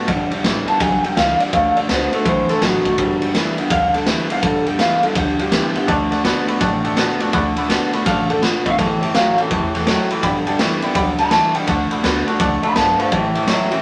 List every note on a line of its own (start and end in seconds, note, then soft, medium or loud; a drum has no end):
0.00 0.29 D4 loud
0.07 0.24 G1 medium
0.07 0.29 G2 medium
0.07 0.29 D3 loud
0.07 0.42 G3 medium
0.07 kick loud
0.07 ride medium
0.31 0.43 G2 medium
0.31 0.43 D3 medium
0.31 muted upright bass stroke medium
0.31 ride medium
0.43 0.64 A1 medium
0.43 0.65 G2 medium
0.43 0.66 E3 medium
0.43 0.79 G3 medium
0.43 0.79 B3 medium
0.43 0.79 E4 medium
0.43 snare loud
0.43 ride medium
0.68 0.79 G2 medium
0.68 0.79 D3 medium
0.68 0.80 A5 medium
0.68 muted upright bass stroke medium
0.68 ride medium
0.80 1.00 B1 medium
0.80 1.02 G2 medium
0.80 1.02 D3 loud
0.80 1.15 F#3 medium
0.80 1.03 G#5 loud
0.80 kick loud
0.80 snare soft
0.80 ride loud
1.04 1.15 G2 medium
1.04 1.16 D3 medium
1.04 1.16 G5 medium
1.04 muted upright bass stroke medium
1.04 ride medium
1.16 1.37 C#2 medium
1.16 1.38 G2 medium
1.16 1.51 E3 medium
1.16 1.38 E3 medium
1.16 1.40 F5 medium
1.16 snare loud
1.16 ride medium
1.40 1.52 G2 medium
1.40 1.52 D3 medium
1.40 1.53 D5 medium
1.40 muted upright bass stroke medium
1.40 ride medium
1.52 1.69 D2 loud
1.52 1.87 D3 medium
1.52 1.74 D3 medium
1.52 1.75 A3 medium
1.52 1.76 F5 medium
1.52 kick loud
1.52 ride medium
1.77 1.88 D3 medium
1.77 1.88 A3 medium
1.77 1.89 D5 medium
1.77 muted upright bass stroke medium
1.77 ride medium
1.89 2.09 C#2 medium
1.89 2.11 D3 medium
1.89 2.12 A3 medium
1.89 2.12 B3 medium
1.89 2.11 B3 medium
1.89 2.11 F#4 loud
1.89 2.12 C5 medium
1.89 snare loud
1.89 ride medium
2.12 2.24 D3 medium
2.12 2.25 A3 medium
2.12 2.26 B3 soft
2.12 2.25 F#4 medium
2.12 2.25 A4 medium
2.12 muted upright bass stroke medium
2.12 ride medium
2.25 2.46 B1 medium
2.25 2.47 D3 medium
2.25 2.60 E3 medium
2.25 2.47 A3 medium
2.25 2.48 C5 loud
2.25 kick loud
2.25 ride medium
2.49 2.61 D3 medium
2.49 2.61 A3 medium
2.49 2.61 A4 medium
2.49 muted upright bass stroke medium
2.49 snare soft
2.49 ride medium
2.61 2.82 A1 medium
2.61 2.83 D3 medium
2.61 2.97 F#3 medium
2.61 2.84 B3 medium
2.61 3.32 F#4 loud
2.61 snare loud
2.61 ride medium
2.85 2.97 D3 medium
2.85 2.97 A3 loud
2.85 muted upright bass stroke medium
2.85 kick medium
2.85 ride medium
2.98 3.40 G1 loud
2.98 3.19 G2 medium
2.98 3.20 D3 medium
2.98 3.33 G3 medium
2.98 kick loud
2.98 ride medium
3.22 3.33 G2 medium
3.22 3.33 D3 loud
3.22 ride medium
3.34 3.56 G2 medium
3.34 3.56 E3 medium
3.34 3.57 G3 medium
3.34 3.57 B3 medium
3.34 3.56 E4 loud
3.34 snare loud
3.34 ride medium
3.57 3.69 G2 medium
3.57 3.70 D3 medium
3.57 3.71 B3 soft
3.57 3.70 E4 medium
3.57 muted upright bass stroke medium
3.57 ride medium
3.70 4.12 D2 medium
3.70 3.92 G2 medium
3.70 4.40 D3 medium
3.70 3.92 D3 loud
3.70 3.94 F5 loud
3.70 kick loud
3.70 ride loud
3.94 4.06 G2 medium
3.94 4.06 D3 medium
3.94 4.07 A4 medium
3.94 snare soft
3.94 ride medium
4.06 4.28 G2 medium
4.06 4.28 E3 loud
4.06 4.29 G3 medium
4.06 4.29 B3 medium
4.06 4.28 E4 loud
4.06 4.30 G4 loud
4.06 snare loud
4.06 ride medium
4.29 4.42 G2 medium
4.29 4.42 D3 medium
4.29 4.43 B3 soft
4.29 4.42 E4 medium
4.29 4.43 F5 loud
4.29 muted upright bass stroke medium
4.29 ride medium
4.43 4.85 G1 medium
4.43 4.64 G2 medium
4.43 4.65 D3 medium
4.43 4.77 G3 medium
4.43 4.66 A4 loud
4.43 kick loud
4.43 ride medium
4.66 4.78 G2 medium
4.66 4.78 D3 medium
4.66 4.79 G4 loud
4.66 ride medium
4.78 5.01 G2 medium
4.78 5.01 E3 loud
4.78 5.01 G3 medium
4.78 5.02 B3 medium
4.78 5.01 E4 loud
4.78 5.02 F5 loud
4.78 snare loud
4.78 ride medium
5.02 5.14 G2 medium
5.02 5.15 D3 medium
5.02 5.15 B3 soft
5.02 5.15 E4 medium
5.02 5.15 A4 medium
5.02 muted upright bass stroke medium
5.02 ride medium
5.15 5.57 D2 medium
5.15 5.37 G2 medium
5.15 5.85 D3 loud
5.15 5.37 D3 loud
5.15 5.38 G4 medium
5.15 kick loud
5.15 ride medium
5.39 5.51 G2 medium
5.39 5.51 D3 medium
5.39 5.87 G4 loud
5.39 ride medium
5.50 5.73 G2 medium
5.50 5.73 E3 loud
5.50 5.74 G3 medium
5.50 5.74 B3 medium
5.50 5.73 E4 loud
5.50 snare loud
5.50 ride medium
5.74 5.87 G2 medium
5.74 5.87 D3 medium
5.74 5.88 B3 medium
5.74 5.87 E4 medium
5.74 muted upright bass stroke medium
5.74 ride medium
5.86 6.30 D2 loud
5.86 6.22 D3 medium
5.86 6.09 D3 medium
5.86 6.10 A3 medium
5.86 6.02 D5 loud
5.86 6.02 F#5 loud
5.86 6.03 A5 loud
5.86 kick loud
5.86 ride medium
6.11 6.23 D3 medium
6.11 6.23 A3 medium
6.11 6.19 D5 medium
6.11 6.19 F#5 medium
6.11 6.20 A5 loud
6.11 snare soft
6.11 ride medium
6.23 6.47 D3 medium
6.23 6.46 D3 loud
6.23 6.47 A3 medium
6.23 6.47 B3 medium
6.23 6.46 B3 loud
6.23 6.46 F#4 loud
6.23 6.38 D5 loud
6.23 6.39 F#5 medium
6.23 6.39 B5 loud
6.23 snare loud
6.23 ride medium
6.47 6.59 D3 medium
6.47 6.59 A3 medium
6.47 6.61 B3 medium
6.47 6.60 F#4 medium
6.47 6.55 D5 medium
6.47 6.56 F#5 medium
6.47 6.56 B5 medium
6.47 muted upright bass stroke medium
6.47 ride medium
6.60 7.03 A1 medium
6.60 7.30 A2 medium
6.60 6.82 D3 medium
6.60 6.82 A3 loud
6.60 6.75 D5 loud
6.60 6.75 F#5 loud
6.60 6.75 A5 loud
6.60 kick loud
6.60 snare soft
6.60 ride medium
6.84 6.96 D3 medium
6.84 6.96 A3 medium
6.84 6.92 D5 medium
6.84 6.92 F#5 medium
6.84 6.92 A5 loud
6.84 ride medium
6.96 7.19 D3 medium
6.96 7.18 D3 medium
6.96 7.19 A3 medium
6.96 7.20 B3 loud
6.96 7.18 B3 loud
6.96 7.19 F#4 medium
6.96 7.11 D5 medium
6.96 7.11 F#5 medium
6.96 7.12 A5 loud
6.96 snare loud
6.96 ride medium
7.20 7.31 D3 medium
7.20 7.32 A3 medium
7.20 7.34 B3 medium
7.20 7.33 F#4 medium
7.20 7.28 D5 medium
7.20 7.28 F#5 medium
7.20 7.28 A5 loud
7.20 muted upright bass stroke medium
7.20 ride medium
7.32 7.75 D2 medium
7.32 7.54 D3 medium
7.32 7.67 D3 medium
7.32 7.54 A3 loud
7.32 7.47 D5 loud
7.32 7.47 F#5 loud
7.32 7.48 B5 loud
7.32 kick loud
7.32 ride medium
7.56 7.68 D3 medium
7.56 7.69 A3 medium
7.56 7.64 D5 medium
7.56 7.65 F#5 medium
7.56 7.65 B5 loud
7.56 ride medium
7.68 7.92 D3 medium
7.68 7.91 D3 medium
7.68 7.92 A3 medium
7.68 7.91 B3 medium
7.68 7.92 B3 medium
7.68 7.91 F#4 loud
7.68 7.84 D5 medium
7.68 7.84 F#5 medium
7.68 7.84 A5 loud
7.68 snare loud
7.68 ride medium
7.92 8.05 D3 medium
7.92 8.05 A3 medium
7.92 8.06 B3 soft
7.92 8.05 F#4 medium
7.92 8.01 D5 medium
7.92 8.01 F#5 medium
7.92 8.01 B5 medium
7.92 muted upright bass stroke medium
7.92 ride medium
8.05 8.48 A1 medium
8.05 8.41 C#3 medium
8.05 8.28 D3 medium
8.05 8.28 A3 medium
8.05 8.20 D5 loud
8.05 8.29 F5 loud
8.05 8.20 F#5 medium
8.05 8.21 A5 loud
8.05 kick loud
8.05 snare soft
8.05 ride loud
8.29 8.41 D3 medium
8.29 8.41 A3 medium
8.29 8.42 A4 loud
8.29 8.37 D5 medium
8.29 8.37 F#5 medium
8.29 8.37 A5 medium
8.29 ride medium
8.41 8.77 B2 loud
8.41 8.63 D3 medium
8.41 8.63 B3 loud
8.41 8.65 F4 loud
8.41 8.56 D5 medium
8.41 8.56 F#5 medium
8.41 8.56 B5 medium
8.41 snare loud
8.41 ride medium
8.65 8.77 D3 medium
8.65 8.77 A3 medium
8.65 8.73 D5 medium
8.65 8.78 F5 loud
8.65 8.73 F#5 medium
8.65 8.73 B5 medium
8.65 kick medium
8.65 ride medium
8.78 9.20 A1 medium
8.78 9.48 A2 loud
8.78 9.00 A2 medium
8.78 9.00 E3 medium
8.78 9.01 A4 loud
8.78 8.92 C#5 loud
8.78 8.92 E5 medium
8.78 8.93 A5 loud
8.78 kick loud
8.78 snare soft
8.78 ride medium
9.01 9.13 A2 medium
9.01 9.13 E3 medium
9.01 9.14 G4 loud
9.01 9.09 C#5 medium
9.01 9.10 E5 medium
9.01 9.10 A5 medium
9.01 ride medium
9.14 9.36 A2 medium
9.14 9.37 E3 medium
9.14 9.36 F#3 loud
9.14 9.38 A3 medium
9.14 9.38 C#4 medium
9.14 9.37 F#4 loud
9.14 9.28 C#5 medium
9.14 9.29 E5 medium
9.14 9.37 F5 loud
9.14 9.29 F#5 medium
9.14 snare loud
9.14 ride medium
9.37 9.50 A2 medium
9.37 9.50 E3 medium
9.37 9.51 C#4 medium
9.37 9.50 F#4 medium
9.37 9.50 A4 medium
9.37 9.45 C#5 medium
9.37 9.46 E5 medium
9.37 9.46 A5 medium
9.37 muted upright bass stroke medium
9.37 ride medium
9.50 9.93 E1 medium
9.50 9.72 A2 medium
9.50 9.86 E3 medium
9.50 9.72 E3 loud
9.50 9.73 G4 loud
9.50 9.65 C#5 loud
9.50 9.65 E5 loud
9.50 9.65 A5 loud
9.50 kick loud
9.50 ride medium
9.73 9.86 A2 medium
9.73 9.86 E3 medium
9.73 10.79 A4 loud
9.73 9.81 C#5 medium
9.73 9.82 E5 medium
9.73 9.82 F#5 medium
9.73 snare soft
9.73 ride medium
9.86 10.08 A2 loud
9.86 10.22 F#3 medium
9.86 10.08 F#3 loud
9.86 10.00 C#5 medium
9.86 10.01 E5 medium
9.86 10.01 A5 medium
9.86 snare loud
9.86 ride medium
10.09 10.22 A2 medium
10.09 10.22 E3 medium
10.09 10.17 C#5 medium
10.09 10.18 E5 medium
10.09 10.18 B5 medium
10.09 muted upright bass stroke medium
10.09 ride medium
10.22 10.65 G1 loud
10.22 10.44 G2 medium
10.22 10.45 D3 loud
10.22 10.57 G3 medium
10.22 10.37 D5 loud
10.22 10.37 G5 loud
10.22 10.37 B5 loud
10.22 kick loud
10.22 ride medium
10.46 10.58 G2 medium
10.46 10.59 D3 medium
10.46 10.54 D5 medium
10.46 10.54 G5 medium
10.46 10.55 A5 loud
10.46 ride medium
10.58 10.81 G2 medium
10.58 10.81 E3 loud
10.58 10.81 G3 medium
10.58 10.82 B3 medium
10.58 10.82 E4 loud
10.58 10.73 D5 medium
10.58 10.74 G5 medium
10.58 10.74 C#6 loud
10.58 snare loud
10.58 ride medium
10.82 10.95 G2 medium
10.82 10.95 D3 medium
10.82 10.96 B3 soft
10.82 10.95 E4 medium
10.82 10.90 D5 medium
10.82 10.90 G5 medium
10.82 10.91 B5 loud
10.82 muted upright bass stroke medium
10.82 ride medium
10.95 11.37 D2 medium
10.95 11.17 G2 medium
10.95 11.17 D3 loud
10.95 11.30 F#3 medium
10.95 11.09 D5 loud
10.95 11.09 G5 loud
10.95 11.10 B5 loud
10.95 kick loud
10.95 ride loud
11.18 11.31 G2 medium
11.18 11.31 D3 medium
11.18 11.26 D5 medium
11.18 11.30 G5 medium
11.18 11.27 G5 medium
11.18 11.27 A5 medium
11.18 11.31 B5 medium
11.18 snare soft
11.18 ride medium
11.31 11.53 G2 medium
11.31 11.66 E3 medium
11.31 11.53 E3 medium
11.31 11.45 D5 medium
11.31 11.53 E5 medium
11.31 11.46 G5 medium
11.31 11.54 A5 loud
11.31 11.46 B5 medium
11.31 snare loud
11.31 ride medium
11.54 11.66 G2 medium
11.54 11.67 D3 medium
11.54 11.62 D5 medium
11.54 11.67 D5 medium
11.54 11.63 G5 medium
11.54 11.68 G5 loud
11.54 11.63 B5 medium
11.54 muted upright bass stroke medium
11.54 ride medium
11.67 11.84 D2 loud
11.67 12.02 D3 loud
11.67 11.89 D3 medium
11.67 11.89 A3 medium
11.67 11.81 D5 loud
11.67 11.82 F#5 medium
11.67 11.90 F#5 loud
11.67 11.82 A5 loud
11.67 kick loud
11.67 snare soft
11.67 ride medium
11.90 12.03 D3 medium
11.90 12.03 A3 medium
11.90 11.98 D5 medium
11.90 11.98 F#5 medium
11.90 11.99 B5 medium
11.90 muted upright bass stroke medium
11.90 ride medium
12.03 12.23 D2 medium
12.03 12.26 D3 medium
12.03 12.25 D3 loud
12.03 12.26 A3 loud
12.03 12.25 B3 medium
12.03 12.26 B3 loud
12.03 12.25 F#4 loud
12.03 12.17 D5 medium
12.03 12.18 F#5 medium
12.03 12.18 B5 loud
12.03 snare loud
12.03 ride medium
12.26 12.39 D3 medium
12.26 12.39 A3 medium
12.26 12.40 B3 soft
12.26 12.39 F#4 medium
12.26 12.34 D5 medium
12.26 12.35 F#5 medium
12.26 12.35 A5 loud
12.26 muted upright bass stroke medium
12.26 ride medium
12.39 12.60 C#2 medium
12.39 12.75 F#2 medium
12.39 12.61 D3 medium
12.39 12.61 A3 loud
12.39 12.54 D5 loud
12.39 12.54 F#5 loud
12.39 12.54 A5 loud
12.39 kick loud
12.39 snare soft
12.39 ride medium
12.62 12.74 D3 medium
12.62 12.75 A3 medium
12.62 12.70 D5 medium
12.62 12.75 F#5 medium
12.62 12.71 F#5 medium
12.62 12.71 A5 medium
12.62 12.76 B5 loud
12.62 muted upright bass stroke medium
12.62 ride medium
12.75 12.96 B1 loud
12.75 13.11 G2 loud
12.75 12.97 D3 medium
12.75 12.97 B3 loud
12.75 12.89 D5 medium
12.75 12.98 F5 medium
12.75 12.90 F#5 medium
12.75 12.98 A5 loud
12.75 12.90 A5 medium
12.75 snare loud
12.75 ride medium
12.98 13.11 D3 medium
12.98 13.11 A3 medium
12.98 13.11 C5 medium
12.98 13.06 D5 medium
12.98 13.11 F5 loud
12.98 13.07 F#5 medium
12.98 13.07 B5 medium
12.98 muted upright bass stroke medium
12.98 ride medium
13.11 13.54 A1 loud
13.11 13.33 A2 medium
13.11 13.82 A2 medium
13.11 13.33 E3 loud
13.11 13.26 C#5 medium
13.11 13.35 E5 loud
13.11 13.26 E5 medium
13.11 13.26 A5 loud
13.11 kick loud
13.11 ride medium
13.35 13.46 A2 medium
13.35 13.47 E3 medium
13.35 13.43 C#5 medium
13.35 13.43 E5 medium
13.35 13.43 A5 medium
13.35 ride medium
13.47 13.69 A2 medium
13.47 13.70 E3 medium
13.47 13.69 F#3 loud
13.47 13.70 A3 loud
13.47 13.71 C#4 medium
13.47 13.70 F#4 loud
13.47 13.62 C#5 medium
13.47 13.82 E5 medium
13.47 13.62 E5 medium
13.47 snare loud
13.47 ride medium
13.71 13.82 A2 medium
13.71 13.82 E3 medium
13.71 13.82 C#4 medium
13.71 13.82 F#4 medium
13.71 13.79 C#5 medium
13.71 13.79 E5 medium
13.71 13.80 B5 medium
13.71 muted upright bass stroke medium
13.71 ride medium